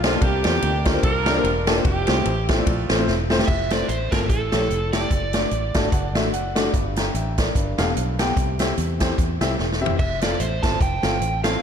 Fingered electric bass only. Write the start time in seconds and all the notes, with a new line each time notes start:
Already playing: B1
0.22 C2
0.45 E2
0.63 D2
1.03 C2
1.44 E1
1.85 F1
2.08 C2
2.26 A1
2.67 A#1
2.90 A1
3.07 E1
3.48 F1
3.89 A1
4.12 G1
4.29 A1
4.53 A#1
4.70 F1
5.11 F#1
5.51 A1
5.75 G1
5.92 F#1
6.15 A1
6.32 F#1
6.74 G1
7.14 A1
7.55 G1
7.78 E1
7.97 B1
8.37 C2
8.78 E2
9.18 E2
9.41 C2
9.59 E1
9.99 F1
10.40 A1
10.64 G1
10.81 F1
11.03 G1
11.21 A1